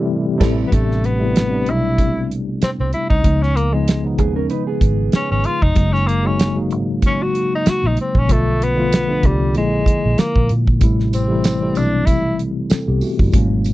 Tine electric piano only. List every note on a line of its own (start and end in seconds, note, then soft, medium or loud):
0.00 0.38 C3 loud
0.00 0.39 E3 loud
0.00 0.40 G3 loud
0.00 0.41 A3 loud
0.00 0.42 E4 loud
0.38 0.61 C3 loud
0.38 0.62 E3 loud
0.38 0.62 G3 loud
0.38 0.63 A3 loud
0.42 0.63 E4 loud
0.70 1.14 C3 medium
0.70 1.15 G3 medium
0.70 1.15 A3 medium
0.70 1.16 B3 medium
0.70 1.16 D4 medium
1.19 1.48 C3 medium
1.19 1.48 G3 medium
1.19 1.49 A3 medium
1.19 1.49 B3 medium
1.19 1.50 E4 medium
1.50 2.64 G3 medium
1.50 2.64 A3 medium
1.50 2.65 B3 medium
1.50 2.63 C4 medium
1.54 2.65 D4 medium
3.22 3.67 C#3 medium
3.22 3.67 F3 medium
3.22 3.68 G#3 medium
3.22 3.68 B3 medium
3.26 3.69 D#4 medium
3.72 4.01 C#3 medium
3.72 4.01 F3 medium
3.72 4.01 G#3 medium
3.72 4.02 B3 medium
3.72 4.02 D#4 medium
4.02 5.16 C#3 medium
4.02 4.10 D#3 soft
4.02 5.17 G#3 medium
4.02 5.17 B3 medium
4.06 5.19 F3 medium
4.06 5.18 D#4 medium
5.74 6.19 C#3 medium
5.74 6.19 F#3 medium
5.74 6.20 G#3 medium
5.74 6.21 A#3 medium
5.74 6.21 D#4 medium
6.23 6.52 C#3 medium
6.23 6.53 F#3 medium
6.23 6.53 G#3 medium
6.23 6.54 A#3 medium
6.27 6.54 D#4 medium
6.54 7.68 C#3 medium
6.54 7.68 F#3 medium
6.54 7.69 G#3 medium
6.54 7.69 A#3 medium
6.54 7.70 D#4 medium
8.27 8.72 D3 medium
8.27 8.72 F3 medium
8.27 8.72 A3 medium
8.27 8.73 B3 medium
8.27 8.73 F4 medium
8.75 9.04 D3 medium
8.75 9.05 F3 medium
8.75 9.06 A3 medium
8.75 9.06 B3 medium
8.79 9.07 F4 medium
9.07 9.52 D3 medium
9.07 9.54 F3 medium
9.07 9.55 A3 medium
9.07 9.55 B3 medium
9.11 9.56 D4 medium
9.53 10.69 D3 medium
9.53 10.69 F3 medium
9.53 10.70 G#3 medium
9.53 10.70 A#3 medium
9.58 10.71 E4 medium
10.79 11.24 C3 medium
10.79 11.24 E3 medium
10.79 11.25 G3 medium
10.79 11.25 A3 medium
10.84 11.26 E4 medium
11.28 11.57 C3 medium
11.28 11.57 E3 medium
11.28 11.58 G3 medium
11.28 11.58 A3 medium
11.32 11.59 E4 medium
11.60 12.73 E3 medium
11.60 12.70 G3 medium
11.60 12.71 A3 medium
11.60 12.69 C4 medium
11.60 12.71 E4 medium
12.70 12.87 C4 medium
12.70 12.87 A4 medium
12.88 13.02 B3 medium
12.88 13.02 G4 medium
13.02 13.19 A3 medium
13.02 13.18 F#4 medium
13.19 13.50 G3 medium
13.19 13.49 E4 medium
13.32 13.73 B2 medium
13.32 13.73 F#3 medium
13.32 13.73 G#3 medium
13.32 13.73 A#3 medium
13.32 13.73 C#4 medium